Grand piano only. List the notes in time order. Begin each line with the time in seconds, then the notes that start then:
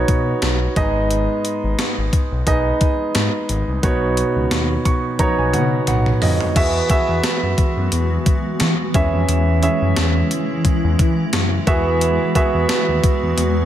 Already playing: B2 B3 D#4 F#4 C#5
0.76 G#2 B3 D#4 G#4 D#5
2.46 B3 D#4 G#4 D#5
3.83 B2 B3 D#4 F#4 C#5
4.85 C#6
5.19 B3 D#4 F#4 C#5 A#5
5.39 G#5
5.54 F#5
5.88 F#5
6.22 D#5
6.56 E3 B3 F#4 G#4 E5
6.89 B3 F#4 G#4 E5
8.94 E3 C#4 E4 G#4 E5
9.62 C#4 E4 G#4 E5
11.67 E3 B3 F#4 G#4 E5
12.35 B3 F#4 G#4 E5